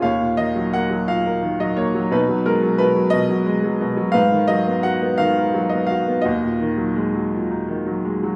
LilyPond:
<<
  \new Staff \with { instrumentName = "Grand piano" } { \time 6/8 \key ees \minor \tempo 4. = 57 << { f''8 ees''8 ges''8 f''8. ees''16 des''8 | b'8 bes'8 b'8 dis''4 r8 | f''8 ees''8 ges''8 f''8. ees''16 f''8 | ees''2~ ees''8 r8 | } \\ { des''4. r4. | dis'4. r4. | ces''4. r4. | ges'2~ ges'8 r8 | } >> }
  \new Staff \with { instrumentName = "Grand piano" } { \clef bass \time 6/8 \key ees \minor ees,16 bes,16 ees16 ges16 bes16 ges16 bes,16 bes'16 ees16 ges16 bes16 ges16 | b,16 fis16 gis16 fis16 b,16 fis16 b,16 fis16 gis16 fis16 b,16 fis16 | aes,16 ees16 ges16 ces'16 ges'16 ces'16 ees16 bes'16 ges16 ces'16 ges'16 ces'16 | ees,16 bes,16 ees16 ges16 aes16 ges16 bes,16 ees'16 ees16 ges16 aes16 ges16 | }
>>